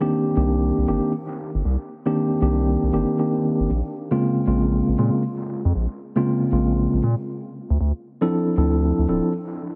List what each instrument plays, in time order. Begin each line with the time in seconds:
0.00 tine electric piano D#3 A#3 C4 D4 G4
0.36 analog synth bass C2, tine electric piano D#3 A#3 C4 D4 G4
0.78 analog synth bass C2
0.88 analog synth bass G1, tine electric piano D#3 A#3 C4 D4 G4
1.55 analog synth bass G1
1.65 analog synth bass C2
2.06 tine electric piano D#3 A#3 C4 D4 G4
2.42 analog synth bass C2, tine electric piano D#3 A#3 C4 D4 G4
2.83 analog synth bass C2
2.93 analog synth bass G1, tine electric piano D#3 A#3 C4 D4 G4
3.18 tine electric piano D#3 A#3 C4 D4 G4
3.60 analog synth bass G1
3.70 analog synth bass A#1
4.11 tine electric piano C#3 G#3 A#3 C4 F4
4.47 analog synth bass A#1, tine electric piano C#3 G#3 A#3 C4 F4
4.88 analog synth bass A#1
4.98 analog synth bass A#2, tine electric piano C#3 G#3 A#3 C4 F4
5.65 analog synth bass F2
5.75 analog synth bass A#1
6.16 tine electric piano C#3 G#3 A#3 C4 F4
6.52 analog synth bass A#1, tine electric piano C#3 G#3 A#3 C4 F4
6.93 analog synth bass A#1
7.04 analog synth bass A#2
7.70 analog synth bass D2
7.81 analog synth bass D2
8.21 tine electric piano F3 C4 D4 E4 A4
8.57 analog synth bass D2, tine electric piano F3 C4 D4 E4 A4
8.99 analog synth bass D2
9.08 analog synth bass D1, tine electric piano F3 C4 D4 E4 A4